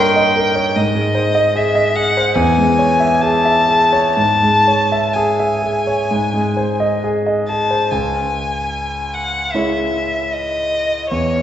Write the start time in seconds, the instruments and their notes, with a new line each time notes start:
Already playing: grand piano G2 A#3 A#4 C#5 D#5, violin G5
0.16 grand piano D#5
0.36 grand piano A#4
0.55 grand piano C#5
0.76 grand piano G#2, violin D#5
0.95 grand piano G#3
1.15 grand piano C5
1.35 grand piano D#5
1.55 grand piano G#4, violin E5
1.75 grand piano D#5
1.96 grand piano G#4, violin F#5
2.17 grand piano C5
2.35 grand piano E2, violin G#5
2.58 grand piano G#3
2.79 grand piano C#5
3.00 grand piano E5
3.21 grand piano G#4, violin A5
3.45 grand piano E5
3.69 grand piano G#4
3.93 grand piano C#5
4.15 grand piano G#2, violin A5
4.43 grand piano G#3
4.68 grand piano C#5
4.92 grand piano E5
5.13 grand piano G#4, violin G#5
5.40 grand piano E5
5.63 grand piano G#4
5.87 grand piano C#5
6.11 grand piano G#2
6.34 grand piano G#3
6.57 grand piano C5
6.80 grand piano D#5
7.04 grand piano G#4
7.26 grand piano D#5
7.48 grand piano G#4, violin A5
7.70 grand piano C5
7.91 grand piano C#2, violin G#5
9.14 violin F#5
9.52 grand piano G#3 E4 C#5, violin E5
10.33 violin D#5
11.10 grand piano E2, violin C#5